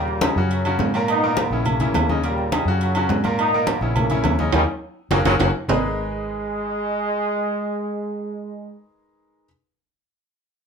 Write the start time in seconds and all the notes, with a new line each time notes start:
Already playing: D#2 A#2 C#3 G3 A#3 A#4
0.08 high conga
0.21 A#2 C#3 G3 C#4 D#4, high conga, low timbale, low agogo
0.36 F#2 C#3 C#4 F#4, high conga
0.51 A#2 C#3 F#3, high conga, low agogo
0.65 C#3 C#4 F#4, high conga, low agogo
0.79 G#2 A#3, high conga, low timbale
0.94 A#2 A#3 C#4 A#4, low agogo
1.08 A#3 B3 D#4, high conga, low agogo
1.22 A#2 A#3 A#4, high conga
1.37 D#3 B3, high conga, low timbale, low agogo
1.50 A#1 C#3 C#4 E4, high conga
1.65 C#3 E3 A#3, high conga, low conga, low agogo
1.80 C#3 C#4 E4, high conga, low conga, low agogo
1.94 D#2, high conga, low timbale, low agogo
2.09 C#3 G#3 C#4 D#4, high conga
2.24 A#2 C#3 G3 A#3 A#4, high conga, low agogo
2.38 high conga
2.52 A#2 C#3 G3 C#4 D#4, high conga, low timbale, low agogo
2.65 F#2 C#3 C#4 F#4, high conga
2.81 A#2 C#3 F#3, high conga, low agogo
2.95 C#3 C#4 F#4, high conga, low agogo
3.09 G#2 F#3, high conga, low timbale
3.24 A#2 A#3 A#4, high conga, low agogo
3.39 A#3 B3 D#4, high conga, low agogo
3.53 A#2 A#3 A#4, high conga
3.67 D#3 B3, high conga, low timbale, low agogo
3.81 A#1 C#3 C#4 E4, high conga
3.96 C#3 E3 A#3, high conga, low conga, low agogo
4.10 C#3 C#4 E4, high conga, low conga, low agogo
4.24 D#2, high conga, low timbale, low agogo
4.39 C#3 G#3 C#4 D#4, high conga
4.53 D#2 C#3 D#3 G3 A#3 C#4 D#4, high conga, high timbale
5.10 F#1 A#2 C#3 F#3 A#3 C#4 F#4, high conga, high timbale
5.25 F#1 A#2 C#3 F#3 A#3 C#4 F#4, high conga, high timbale
5.39 F#1 A#2 C#3 F#3 A#3 C#4 F#4, high conga, high timbale
5.68 G#1 G#3 D#4 G#4 A#4 B4 D#5, low conga, low timbale